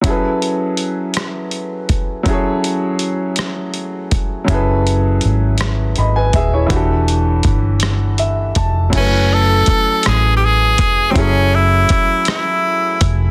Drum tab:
CC |------|------|------|------|
HH |xxxxxx|xxxxxx|xxxxxx|xxxxxx|
SD |---r--|---r--|---r--|---r--|
BD |o----o|o----o|o----o|o-o--o|

CC |x-----|------|
HH |x-xx-x|x-xx-x|
SD |---r--|---r--|
BD |o-o--o|o-o--o|